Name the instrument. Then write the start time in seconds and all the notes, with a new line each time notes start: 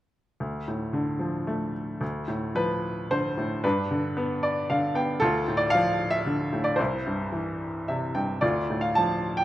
upright piano
0.40 D2
0.68 A2
0.93 D3
1.19 F3
1.47 A3
2.01 D2
2.28 A2
2.55 F3 B4
3.11 D3 C5
3.38 A2
3.64 G2 D4 B4
3.91 D3
4.17 B3
4.43 D5
4.70 D3 F5
4.95 B3 G5
5.20 D2 F4 A4
5.48 A2
5.57 D5
5.70 F5
5.75 F3
6.11 E5
6.26 D3
6.53 A2
6.64 D5
6.76 C2 C5
6.80 E4
7.07 G2
7.32 E3
7.88 C3 E5
8.15 G2 G5
8.41 D2 F4 D5
8.70 A2
8.81 F5
8.95 F3 A5
9.37 G5